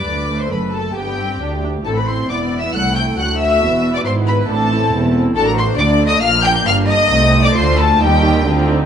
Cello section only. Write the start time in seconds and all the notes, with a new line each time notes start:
0.05 D2
0.51 F#2
0.96 G2
1.41 D2
1.86 A2
2.29 E2
2.75 C2
3.18 D2
3.63 E2
4.05 G#2
4.50 A2
4.94 E2
5.37 A2
5.79 D3
6.22 A#2
6.66 G2
7.11 C3
7.56 D3
8.01 D#3
8.45 D3